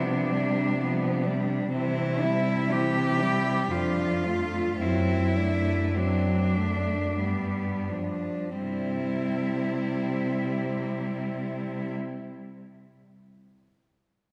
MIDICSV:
0, 0, Header, 1, 5, 480
1, 0, Start_track
1, 0, Key_signature, 0, "major"
1, 0, Tempo, 949367
1, 876, Time_signature, 3, 2, 24, 8
1, 876, Tempo, 995025
1, 1836, Tempo, 1083032
1, 2316, Tempo, 1151631
1, 2796, Tempo, 1244813
1, 3276, Tempo, 1398601
1, 5719, End_track
2, 0, Start_track
2, 0, Title_t, "Cello"
2, 0, Program_c, 0, 42
2, 0, Note_on_c, 0, 62, 49
2, 636, Note_off_c, 0, 62, 0
2, 882, Note_on_c, 0, 64, 58
2, 1350, Note_on_c, 0, 67, 64
2, 1357, Note_off_c, 0, 64, 0
2, 1831, Note_on_c, 0, 65, 58
2, 1838, Note_off_c, 0, 67, 0
2, 2318, Note_on_c, 0, 64, 56
2, 2324, Note_off_c, 0, 65, 0
2, 2801, Note_on_c, 0, 62, 51
2, 2807, Note_off_c, 0, 64, 0
2, 3518, Note_off_c, 0, 62, 0
2, 3758, Note_on_c, 0, 64, 37
2, 4900, Note_off_c, 0, 64, 0
2, 5719, End_track
3, 0, Start_track
3, 0, Title_t, "Cello"
3, 0, Program_c, 1, 42
3, 0, Note_on_c, 1, 59, 35
3, 155, Note_on_c, 1, 62, 37
3, 162, Note_off_c, 1, 59, 0
3, 396, Note_off_c, 1, 62, 0
3, 398, Note_on_c, 1, 59, 38
3, 629, Note_on_c, 1, 62, 36
3, 636, Note_off_c, 1, 59, 0
3, 869, Note_off_c, 1, 62, 0
3, 872, Note_on_c, 1, 60, 43
3, 1113, Note_on_c, 1, 64, 36
3, 1120, Note_off_c, 1, 60, 0
3, 1347, Note_on_c, 1, 60, 36
3, 1354, Note_off_c, 1, 64, 0
3, 1583, Note_on_c, 1, 64, 39
3, 1590, Note_off_c, 1, 60, 0
3, 1829, Note_off_c, 1, 64, 0
3, 1831, Note_on_c, 1, 62, 38
3, 2065, Note_on_c, 1, 65, 34
3, 2071, Note_off_c, 1, 62, 0
3, 2307, Note_off_c, 1, 65, 0
3, 2310, Note_on_c, 1, 60, 37
3, 2549, Note_on_c, 1, 62, 31
3, 2556, Note_off_c, 1, 60, 0
3, 2791, Note_on_c, 1, 60, 28
3, 2797, Note_off_c, 1, 62, 0
3, 3023, Note_on_c, 1, 62, 31
3, 3029, Note_off_c, 1, 60, 0
3, 3271, Note_off_c, 1, 62, 0
3, 3273, Note_on_c, 1, 59, 29
3, 3513, Note_on_c, 1, 62, 28
3, 3518, Note_off_c, 1, 59, 0
3, 3760, Note_off_c, 1, 62, 0
3, 3762, Note_on_c, 1, 60, 29
3, 4904, Note_off_c, 1, 60, 0
3, 5719, End_track
4, 0, Start_track
4, 0, Title_t, "Cello"
4, 0, Program_c, 2, 42
4, 0, Note_on_c, 2, 53, 35
4, 158, Note_on_c, 2, 55, 39
4, 165, Note_off_c, 2, 53, 0
4, 395, Note_off_c, 2, 55, 0
4, 398, Note_on_c, 2, 53, 37
4, 640, Note_on_c, 2, 55, 36
4, 647, Note_off_c, 2, 53, 0
4, 877, Note_off_c, 2, 55, 0
4, 880, Note_on_c, 2, 52, 42
4, 1120, Note_on_c, 2, 55, 38
4, 1127, Note_off_c, 2, 52, 0
4, 1349, Note_on_c, 2, 52, 34
4, 1356, Note_off_c, 2, 55, 0
4, 1591, Note_on_c, 2, 55, 37
4, 1599, Note_off_c, 2, 52, 0
4, 1835, Note_off_c, 2, 55, 0
4, 1838, Note_on_c, 2, 53, 36
4, 2078, Note_on_c, 2, 57, 33
4, 2084, Note_off_c, 2, 53, 0
4, 2319, Note_off_c, 2, 57, 0
4, 2323, Note_on_c, 2, 54, 35
4, 2554, Note_on_c, 2, 57, 33
4, 2560, Note_off_c, 2, 54, 0
4, 2798, Note_on_c, 2, 54, 32
4, 2803, Note_off_c, 2, 57, 0
4, 3033, Note_on_c, 2, 57, 33
4, 3039, Note_off_c, 2, 54, 0
4, 3274, Note_off_c, 2, 57, 0
4, 3276, Note_on_c, 2, 55, 28
4, 3518, Note_on_c, 2, 53, 24
4, 3523, Note_off_c, 2, 55, 0
4, 3759, Note_off_c, 2, 53, 0
4, 3761, Note_on_c, 2, 55, 30
4, 4903, Note_off_c, 2, 55, 0
4, 5719, End_track
5, 0, Start_track
5, 0, Title_t, "Cello"
5, 0, Program_c, 3, 42
5, 0, Note_on_c, 3, 48, 42
5, 858, Note_off_c, 3, 48, 0
5, 876, Note_on_c, 3, 48, 41
5, 1817, Note_off_c, 3, 48, 0
5, 1831, Note_on_c, 3, 41, 41
5, 2304, Note_off_c, 3, 41, 0
5, 2316, Note_on_c, 3, 42, 40
5, 3274, Note_on_c, 3, 43, 35
5, 3279, Note_off_c, 3, 42, 0
5, 3663, Note_off_c, 3, 43, 0
5, 3763, Note_on_c, 3, 48, 31
5, 4905, Note_off_c, 3, 48, 0
5, 5719, End_track
0, 0, End_of_file